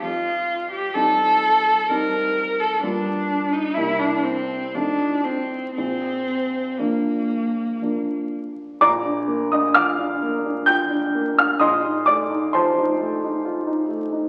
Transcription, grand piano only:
<<
  \new Staff \with { instrumentName = "Grand piano" } { \time 3/4 \key bes \major \tempo 4 = 64 r2. | r2. | r2. | <d'' bes'' d'''>8. <ees'' ees'''>16 <f'' d''' f'''>4 <g'' g'''>8. <f'' f'''>16 |
<ees'' c''' ees'''>8 <d'' d'''>8 <c'' a'' c'''>4. r8 | }
  \new Staff \with { instrumentName = "Grand piano" } { \time 3/4 \key bes \major f,4 <g c' ees'>4 <g c' ees'>4 | <g, g bes f'>4 <c, g bes e'>4 <f, f a ees'>4 | bes,,4 <f bes d'>4 <f bes d'>4 | bes,,16 d'16 bes16 d'16 f16 d'16 bes16 d'16 f'16 d'16 bes16 d'16 |
bes,,16 ees'16 a16 ees'16 f16 ees'16 a16 ees'16 f'16 ees'16 a16 ees'16 | }
>>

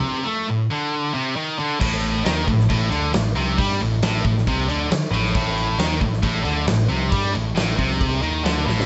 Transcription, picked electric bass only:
\new Staff \with { instrumentName = "Picked electric bass" } { \clef bass \time 4/4 \key a \minor \tempo 4 = 135 r1 | a,,4 dis,8 a,,8 a,,8 d,8 a,,8 c,8 | g,8 a,,8 a,,8 a,,8 c,8 d,8 r8 a,,8 | a,,4 dis,8 a,,8 a,,8 d,8 a,,8 c,8 |
g,8 a,,8 a,,8 c,4 dis,8 d,8 a,,8 | }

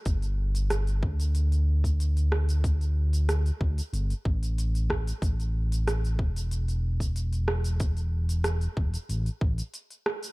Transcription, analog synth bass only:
\new Staff \with { instrumentName = "Analog synth bass" } { \clef bass \time 4/4 \key g \major \tempo 4 = 93 g,,4. d,2~ d,8~ | d,4. d,8 g,,8 a,,4. | a,,4. e,,2~ e,,8~ | e,,4. e,,8 a,,8 a,,8 r4 | }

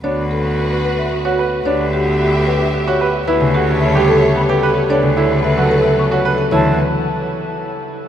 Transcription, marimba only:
\new Staff \with { instrumentName = "Marimba" } { \time 3/4 \key d \major \tempo 4 = 111 cis''16 r16 a'16 r8. b'16 e''16 r16 cis''16 r8 | cis''16 r16 g'16 r8. b'16 e''16 r16 cis''16 r8 | b'16 r16 g'16 r16 e''16 r16 a'16 e''16 r16 b'16 r16 g'16 | cis''16 r16 a'16 r16 e''16 r16 b'16 e''16 r16 cis''16 r16 a'16 |
cis''8 r2 r8 | }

